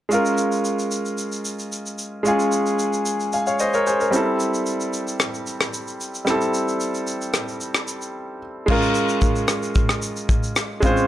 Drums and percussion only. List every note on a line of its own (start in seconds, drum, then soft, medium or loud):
0.11 shaker medium
0.25 shaker soft
0.38 shaker medium
0.52 shaker medium
0.65 shaker medium
0.79 shaker medium
0.91 shaker medium
1.05 shaker soft
1.18 shaker medium
1.32 shaker soft
1.45 shaker medium
1.59 shaker medium
1.72 shaker medium
1.86 shaker medium
1.98 shaker medium
2.25 shaker medium
2.39 shaker medium
2.52 shaker medium
2.66 shaker medium
2.79 shaker medium
2.93 shaker medium
3.06 shaker medium
3.20 shaker soft
3.33 shaker medium
3.47 shaker soft
3.59 shaker medium
3.73 shaker soft
3.87 shaker medium
4.01 shaker medium
4.13 shaker medium
4.40 shaker medium
4.54 shaker soft
4.66 shaker medium
4.80 shaker medium
4.93 shaker medium
5.08 shaker medium
5.20 cross-stick medium
5.20 shaker medium
5.34 shaker soft
5.47 shaker medium
5.61 cross-stick medium
5.61 shaker soft
5.73 shaker medium
5.87 shaker medium
6.01 shaker medium
6.14 shaker medium
6.27 cross-stick medium
6.27 shaker medium
6.41 shaker medium
6.54 shaker medium
6.68 shaker medium
6.80 shaker medium
6.94 shaker medium
7.07 shaker medium
7.21 shaker medium
7.34 cross-stick medium
7.34 shaker medium
7.48 shaker soft
7.61 shaker medium
7.74 cross-stick medium
7.74 shaker soft
7.88 shaker medium
8.02 shaker medium
8.68 kick loud
8.68 crash medium
8.82 shaker medium
8.95 shaker medium
9.09 shaker medium
9.22 kick medium
9.22 shaker medium
9.36 shaker medium
9.48 cross-stick medium
9.48 shaker medium
9.62 shaker soft
9.75 kick loud
9.75 shaker medium
9.89 cross-stick medium
9.89 shaker soft
10.02 shaker medium
10.16 shaker medium
10.29 kick medium
10.29 shaker medium
10.43 shaker medium
10.56 cross-stick medium
10.56 shaker medium
10.83 kick loud
10.83 shaker medium
10.97 shaker medium